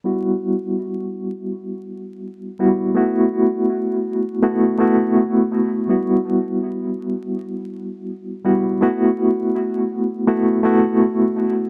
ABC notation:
X:1
M:4/4
L:1/8
Q:"Swing 16ths" 1/4=82
K:Em
V:1 name="Reed electric piano"
[G,B,EF]6- [G,B,EF] [G,B,EF] | [A,B,EF]4 [A,B,EF] [A,B,EF]3 | [G,B,EF]6- [G,B,EF] [G,B,EF] | [A,B,EF]4 [A,B,EF] [A,B,EF]3 |]